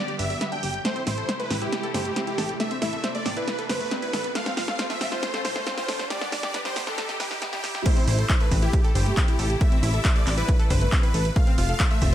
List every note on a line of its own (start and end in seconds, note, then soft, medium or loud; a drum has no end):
0.00 0.83 D3 medium
0.00 0.83 G3 medium
0.00 0.83 B3 medium
0.00 0.83 G4 medium
0.00 0.11 D5 medium
0.00 riser medium
0.08 0.12 G4 loud
0.08 closed hi-hat soft
0.19 0.36 G1 medium
0.19 0.25 B4 medium
0.19 0.44 E5 medium
0.19 open hi-hat loud
0.30 0.36 G3 medium
0.30 open hi-hat medium
0.41 0.47 B3 loud
0.41 snare medium
0.41 closed hi-hat medium
0.52 0.58 D4 medium
0.52 0.77 G5 loud
0.52 closed hi-hat soft
0.63 0.80 G1 medium
0.63 0.66 G4 medium
0.63 open hi-hat loud
0.74 closed hi-hat soft
0.85 6.07 C3 medium
0.85 4.32 E3 medium
0.85 0.91 A3 medium
0.85 4.32 A3 medium
0.85 2.58 E4 medium
0.85 1.01 C5 loud
0.85 snare medium
0.85 closed hi-hat medium
0.96 0.99 C4 loud
0.96 closed hi-hat soft
1.07 1.24 A1 medium
1.07 1.15 E4 medium
1.07 1.31 C5 medium
1.07 snare medium
1.07 open hi-hat loud
1.18 1.23 A4 medium
1.18 closed hi-hat medium
1.29 1.34 C5 medium
1.29 snare medium
1.29 closed hi-hat medium
1.40 1.45 A3 medium
1.40 1.56 B4 medium
1.40 closed hi-hat soft
1.51 1.67 A1 medium
1.51 1.54 C4 medium
1.51 snare medium
1.51 open hi-hat loud
1.62 1.70 E4 loud
1.62 1.86 G4 loud
1.62 closed hi-hat soft
1.73 snare medium
1.73 closed hi-hat medium
1.83 1.87 A4 loud
1.83 closed hi-hat soft
1.94 2.11 G1 loud
1.94 2.19 G4 medium
1.94 2.00 C5 medium
1.94 snare medium
1.94 open hi-hat loud
2.05 2.11 A3 medium
2.05 closed hi-hat medium
2.16 2.22 C4 loud
2.16 snare medium
2.16 closed hi-hat medium
2.27 2.33 E4 medium
2.27 2.52 G4 medium
2.27 closed hi-hat soft
2.38 2.55 A1 medium
2.38 2.42 A4 medium
2.38 snare medium
2.38 open hi-hat loud
2.49 closed hi-hat soft
2.60 2.66 A3 medium
2.60 4.34 D4 medium
2.60 2.76 E5 medium
2.60 snare medium
2.60 closed hi-hat medium
2.71 2.74 C4 loud
2.71 closed hi-hat soft
2.82 2.99 A1 loud
2.82 2.91 E4 medium
2.82 3.07 E5 loud
2.82 snare medium
2.82 open hi-hat loud
2.93 2.99 A4 medium
2.93 closed hi-hat medium
3.04 3.10 C5 medium
3.04 snare medium
3.04 closed hi-hat medium
3.15 3.21 A3 medium
3.15 3.31 D5 medium
3.15 closed hi-hat soft
3.26 3.43 A1 medium
3.26 3.29 C4 medium
3.26 snare medium
3.26 open hi-hat loud
3.37 3.45 E4 loud
3.37 3.61 B4 medium
3.37 closed hi-hat soft
3.48 snare medium
3.48 closed hi-hat medium
3.59 3.62 A4 loud
3.59 closed hi-hat soft
3.69 3.86 G1 loud
3.69 3.94 B4 loud
3.69 3.75 C5 medium
3.69 snare medium
3.69 open hi-hat loud
3.80 3.86 A3 medium
3.80 open hi-hat medium
3.91 3.97 C4 medium
3.91 snare medium
3.91 closed hi-hat medium
4.02 4.08 E4 medium
4.02 4.27 B4 loud
4.02 closed hi-hat medium
4.13 4.30 A1 medium
4.13 4.17 A4 medium
4.13 snare medium
4.13 open hi-hat loud
4.24 closed hi-hat soft
4.35 6.09 F3 medium
4.35 4.41 A3 medium
4.35 6.09 A3 medium
4.35 6.09 F4 medium
4.35 4.52 F5 loud
4.35 snare medium
4.35 closed hi-hat loud
4.46 4.50 C4 medium
4.46 snare medium
4.46 closed hi-hat medium
4.57 4.74 F1 loud
4.57 4.66 F4 medium
4.57 4.82 F5 medium
4.57 snare medium
4.57 open hi-hat loud
4.68 4.74 A4 medium
4.68 snare medium
4.68 closed hi-hat medium
4.79 4.85 C5 medium
4.79 snare loud
4.79 closed hi-hat loud
4.90 4.96 A3 medium
4.90 5.06 E5 loud
4.90 snare medium
4.90 closed hi-hat medium
5.01 5.18 F1 medium
5.01 5.04 C4 medium
5.01 snare medium
5.01 open hi-hat loud
5.12 5.20 F4 loud
5.12 5.36 C5 medium
5.12 snare medium
5.12 closed hi-hat medium
5.23 snare medium
5.23 closed hi-hat loud
5.34 5.37 A4 loud
5.34 snare medium
5.34 closed hi-hat medium
5.45 5.62 C2 loud
5.45 5.69 C5 loud
5.45 5.50 C5 medium
5.45 snare loud
5.45 open hi-hat loud
5.56 5.61 A3 medium
5.56 snare medium
5.56 closed hi-hat medium
5.67 5.72 C4 loud
5.67 snare loud
5.67 closed hi-hat medium
5.78 5.83 F4 medium
5.78 6.02 C5 loud
5.78 snare medium
5.78 closed hi-hat medium
5.88 6.05 F1 medium
5.88 5.92 A4 medium
5.88 snare loud
5.88 open hi-hat loud
5.99 snare medium
5.99 closed hi-hat medium
6.10 7.84 D3 medium
6.10 6.16 G3 medium
6.10 7.84 G3 medium
6.10 7.84 B3 medium
6.10 7.84 G4 medium
6.10 6.27 D5 loud
6.10 snare loud
6.10 closed hi-hat loud
6.21 6.25 B3 medium
6.21 snare medium
6.21 closed hi-hat medium
6.32 6.49 G1 loud
6.32 6.41 D4 medium
6.32 6.57 D5 medium
6.32 snare loud
6.32 open hi-hat loud
6.43 6.49 G4 medium
6.43 snare medium
6.43 closed hi-hat medium
6.54 6.60 B4 medium
6.54 snare loud
6.54 closed hi-hat loud
6.65 6.71 G3 medium
6.65 6.82 C5 medium
6.65 snare medium
6.65 closed hi-hat medium
6.76 6.93 G1 medium
6.76 6.80 B3 medium
6.76 snare loud
6.76 open hi-hat loud
6.87 6.96 D4 loud
6.87 7.12 A4 medium
6.87 snare medium
6.87 closed hi-hat medium
6.98 snare loud
6.98 closed hi-hat loud
7.09 7.12 G4 loud
7.09 snare medium
7.09 closed hi-hat medium
7.20 7.37 F1 loud
7.20 7.44 G4 loud
7.20 7.26 B4 medium
7.20 snare loud
7.20 open hi-hat loud
7.31 7.37 G3 medium
7.31 snare loud
7.31 open hi-hat medium
7.42 7.48 B3 loud
7.42 snare loud
7.42 closed hi-hat loud
7.53 7.59 D4 medium
7.53 7.77 G4 loud
7.53 snare loud
7.53 closed hi-hat medium
7.64 7.81 G1 medium
7.64 7.67 G4 medium
7.64 snare loud
7.64 open hi-hat loud
7.75 snare medium
7.75 closed hi-hat medium
7.86 12.15 C3 medium
7.86 11.33 E3 medium
7.86 7.91 A3 medium
7.86 9.59 A3 medium
7.86 11.33 E4 medium
7.86 8.02 C5 loud
7.86 kick loud
7.86 closed hi-hat medium
7.86 crash loud
7.97 8.00 C4 loud
7.97 closed hi-hat medium
8.07 8.24 A1 loud
8.07 8.16 E4 medium
8.07 8.32 C5 medium
8.07 open hi-hat loud
8.19 8.24 A4 medium
8.19 closed hi-hat medium
8.30 8.35 C5 medium
8.30 kick loud
8.30 clap loud
8.30 closed hi-hat loud
8.40 8.46 A3 medium
8.40 8.57 B4 medium
8.40 closed hi-hat medium
8.51 8.68 A1 medium
8.51 8.55 C4 medium
8.51 kick medium
8.51 open hi-hat loud
8.62 8.71 E4 loud
8.62 8.87 G4 medium
8.62 closed hi-hat medium
8.73 kick loud
8.73 closed hi-hat loud
8.84 8.88 A4 loud
8.84 closed hi-hat medium
8.95 9.12 G1 loud
8.95 9.20 G4 medium
8.95 9.01 C5 medium
8.95 open hi-hat loud
9.06 9.12 A3 medium
9.06 closed hi-hat medium
9.17 9.23 C4 loud
9.17 kick loud
9.17 clap loud
9.17 closed hi-hat medium
9.28 9.34 E4 medium
9.28 9.52 G4 loud
9.28 closed hi-hat medium
9.39 9.56 A1 medium
9.39 9.42 A4 medium
9.39 open hi-hat loud
9.50 closed hi-hat medium
9.61 11.34 G3 medium
9.61 9.67 A3 medium
9.61 9.77 E5 loud
9.61 kick loud
9.61 closed hi-hat loud
9.72 9.75 C4 loud
9.72 closed hi-hat medium
9.83 10.00 A1 loud
9.83 9.91 E4 medium
9.83 10.07 E5 medium
9.83 open hi-hat loud
9.94 9.99 A4 medium
9.94 closed hi-hat medium
10.05 10.10 C5 medium
10.05 kick loud
10.05 clap loud
10.05 closed hi-hat loud
10.15 10.21 A3 medium
10.15 10.32 D5 loud
10.15 closed hi-hat medium
10.26 10.43 A1 medium
10.26 10.30 C4 medium
10.26 clap medium
10.26 open hi-hat loud
10.38 10.46 E4 loud
10.38 10.62 B4 medium
10.38 closed hi-hat medium
10.49 kick loud
10.49 closed hi-hat loud
10.59 10.63 A4 loud
10.59 closed hi-hat medium
10.70 10.87 G1 loud
10.70 10.95 B4 loud
10.70 10.76 C5 medium
10.70 kick medium
10.70 open hi-hat loud
10.81 10.87 A3 medium
10.81 closed hi-hat medium
10.92 10.98 C4 loud
10.92 kick loud
10.92 clap loud
10.92 closed hi-hat medium
11.03 11.09 E4 medium
11.03 11.28 B4 loud
11.03 closed hi-hat medium
11.14 11.31 A1 medium
11.14 11.18 A4 medium
11.14 open hi-hat loud
11.25 closed hi-hat medium
11.36 12.15 F3 medium
11.36 12.15 A3 medium
11.36 11.42 A3 medium
11.36 12.15 F4 medium
11.36 11.52 F5 medium
11.36 kick loud
11.36 closed hi-hat medium
11.47 11.50 C4 loud
11.47 closed hi-hat medium
11.58 11.75 F1 medium
11.58 11.66 F4 medium
11.58 11.82 F5 loud
11.58 open hi-hat loud
11.69 11.75 A4 medium
11.69 closed hi-hat medium
11.80 11.86 C5 medium
11.80 kick loud
11.80 clap loud
11.80 closed hi-hat loud
11.91 11.96 A3 medium
11.91 12.07 E5 loud
11.91 closed hi-hat soft
12.02 12.15 F1 medium
12.02 12.05 C4 medium
12.02 kick medium
12.02 open hi-hat loud